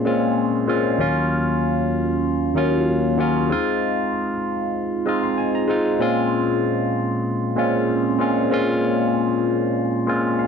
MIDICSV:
0, 0, Header, 1, 2, 480
1, 0, Start_track
1, 0, Tempo, 626305
1, 765, Time_signature, 4, 2, 24, 8
1, 8026, End_track
2, 0, Start_track
2, 0, Title_t, "Tine electric piano"
2, 0, Program_c, 0, 4
2, 0, Control_c, 0, 64, 127
2, 0, Note_on_c, 0, 46, 94
2, 0, Note_on_c, 0, 56, 90
2, 0, Note_on_c, 0, 60, 89
2, 0, Note_on_c, 0, 61, 88
2, 0, Note_on_c, 0, 65, 107
2, 33, Note_off_c, 0, 46, 0
2, 33, Note_on_c, 0, 46, 85
2, 39, Note_off_c, 0, 56, 0
2, 39, Note_on_c, 0, 56, 73
2, 44, Note_off_c, 0, 60, 0
2, 44, Note_on_c, 0, 60, 77
2, 50, Note_off_c, 0, 61, 0
2, 50, Note_on_c, 0, 61, 70
2, 54, Note_off_c, 0, 65, 0
2, 54, Note_on_c, 0, 65, 93
2, 365, Note_off_c, 0, 46, 0
2, 368, Note_off_c, 0, 56, 0
2, 370, Note_off_c, 0, 60, 0
2, 373, Note_off_c, 0, 61, 0
2, 375, Note_off_c, 0, 65, 0
2, 511, Note_on_c, 0, 46, 85
2, 518, Note_on_c, 0, 56, 74
2, 525, Note_on_c, 0, 60, 76
2, 529, Note_on_c, 0, 61, 70
2, 534, Note_on_c, 0, 65, 96
2, 684, Note_off_c, 0, 46, 0
2, 688, Note_off_c, 0, 56, 0
2, 691, Note_off_c, 0, 60, 0
2, 693, Note_off_c, 0, 61, 0
2, 696, Note_off_c, 0, 65, 0
2, 750, Note_on_c, 0, 39, 94
2, 758, Note_on_c, 0, 54, 79
2, 762, Note_on_c, 0, 58, 86
2, 767, Note_on_c, 0, 61, 82
2, 774, Note_on_c, 0, 65, 111
2, 775, Control_c, 0, 64, 0
2, 906, Control_c, 0, 64, 127
2, 1402, Note_off_c, 0, 39, 0
2, 1406, Note_off_c, 0, 54, 0
2, 1409, Note_off_c, 0, 58, 0
2, 1411, Note_off_c, 0, 61, 0
2, 1414, Note_off_c, 0, 65, 0
2, 1947, Note_on_c, 0, 39, 85
2, 1955, Note_on_c, 0, 54, 75
2, 1961, Note_on_c, 0, 58, 80
2, 1967, Note_on_c, 0, 61, 82
2, 1974, Note_on_c, 0, 65, 101
2, 2281, Note_off_c, 0, 39, 0
2, 2285, Note_off_c, 0, 54, 0
2, 2288, Note_off_c, 0, 58, 0
2, 2291, Note_off_c, 0, 61, 0
2, 2294, Note_off_c, 0, 65, 0
2, 2431, Note_on_c, 0, 39, 76
2, 2435, Note_on_c, 0, 54, 82
2, 2442, Note_on_c, 0, 58, 75
2, 2449, Note_on_c, 0, 61, 82
2, 2455, Note_on_c, 0, 65, 94
2, 2603, Note_off_c, 0, 39, 0
2, 2606, Note_off_c, 0, 54, 0
2, 2609, Note_off_c, 0, 58, 0
2, 2612, Note_off_c, 0, 61, 0
2, 2615, Note_off_c, 0, 65, 0
2, 2674, Note_on_c, 0, 56, 90
2, 2680, Note_on_c, 0, 60, 88
2, 2686, Note_on_c, 0, 63, 83
2, 2693, Control_c, 0, 64, 0
2, 2698, Note_on_c, 0, 65, 110
2, 2811, Control_c, 0, 64, 127
2, 3324, Note_off_c, 0, 56, 0
2, 3327, Note_off_c, 0, 60, 0
2, 3330, Note_off_c, 0, 63, 0
2, 3336, Note_off_c, 0, 65, 0
2, 3874, Note_on_c, 0, 56, 80
2, 3881, Note_on_c, 0, 60, 71
2, 3884, Note_on_c, 0, 75, 66
2, 3889, Note_on_c, 0, 63, 69
2, 3897, Note_on_c, 0, 65, 91
2, 4004, Note_off_c, 0, 75, 0
2, 4009, Note_on_c, 0, 77, 63
2, 4113, Note_off_c, 0, 77, 0
2, 4121, Note_on_c, 0, 80, 69
2, 4204, Note_off_c, 0, 56, 0
2, 4208, Note_off_c, 0, 60, 0
2, 4212, Note_off_c, 0, 63, 0
2, 4216, Note_off_c, 0, 65, 0
2, 4242, Note_off_c, 0, 80, 0
2, 4253, Note_on_c, 0, 82, 74
2, 4351, Note_on_c, 0, 56, 81
2, 4361, Note_on_c, 0, 60, 74
2, 4367, Note_on_c, 0, 63, 84
2, 4374, Note_on_c, 0, 65, 87
2, 4523, Note_off_c, 0, 56, 0
2, 4528, Note_off_c, 0, 60, 0
2, 4531, Note_off_c, 0, 63, 0
2, 4534, Note_off_c, 0, 65, 0
2, 4579, Note_off_c, 0, 82, 0
2, 4590, Note_on_c, 0, 46, 94
2, 4598, Note_on_c, 0, 56, 83
2, 4605, Note_on_c, 0, 60, 82
2, 4610, Note_on_c, 0, 61, 85
2, 4613, Control_c, 0, 64, 0
2, 4614, Note_on_c, 0, 65, 105
2, 4769, Control_c, 0, 64, 127
2, 5242, Note_off_c, 0, 46, 0
2, 5246, Note_off_c, 0, 56, 0
2, 5249, Note_off_c, 0, 60, 0
2, 5252, Note_off_c, 0, 61, 0
2, 5254, Note_off_c, 0, 65, 0
2, 5791, Note_on_c, 0, 46, 83
2, 5796, Note_on_c, 0, 56, 76
2, 5804, Note_on_c, 0, 60, 77
2, 5810, Note_on_c, 0, 61, 82
2, 5817, Note_on_c, 0, 65, 100
2, 6123, Note_off_c, 0, 46, 0
2, 6126, Note_off_c, 0, 56, 0
2, 6129, Note_off_c, 0, 60, 0
2, 6132, Note_off_c, 0, 61, 0
2, 6136, Note_off_c, 0, 65, 0
2, 6272, Note_on_c, 0, 46, 92
2, 6278, Note_on_c, 0, 56, 71
2, 6283, Note_on_c, 0, 60, 73
2, 6289, Note_on_c, 0, 61, 70
2, 6293, Note_on_c, 0, 65, 82
2, 6444, Note_off_c, 0, 46, 0
2, 6447, Note_off_c, 0, 56, 0
2, 6449, Note_off_c, 0, 60, 0
2, 6452, Note_off_c, 0, 61, 0
2, 6454, Note_off_c, 0, 65, 0
2, 6515, Note_on_c, 0, 46, 87
2, 6521, Note_on_c, 0, 56, 84
2, 6525, Note_on_c, 0, 60, 78
2, 6534, Note_on_c, 0, 61, 85
2, 6541, Note_on_c, 0, 65, 112
2, 7165, Note_off_c, 0, 46, 0
2, 7168, Note_off_c, 0, 56, 0
2, 7170, Note_off_c, 0, 60, 0
2, 7174, Note_off_c, 0, 61, 0
2, 7178, Note_off_c, 0, 65, 0
2, 7712, Note_on_c, 0, 46, 87
2, 7719, Note_on_c, 0, 56, 79
2, 7725, Note_on_c, 0, 60, 75
2, 7729, Note_on_c, 0, 61, 73
2, 7736, Note_on_c, 0, 65, 95
2, 7963, Note_on_c, 0, 77, 69
2, 8026, Note_off_c, 0, 46, 0
2, 8026, Note_off_c, 0, 56, 0
2, 8026, Note_off_c, 0, 60, 0
2, 8026, Note_off_c, 0, 61, 0
2, 8026, Note_off_c, 0, 65, 0
2, 8026, Note_off_c, 0, 77, 0
2, 8026, End_track
0, 0, End_of_file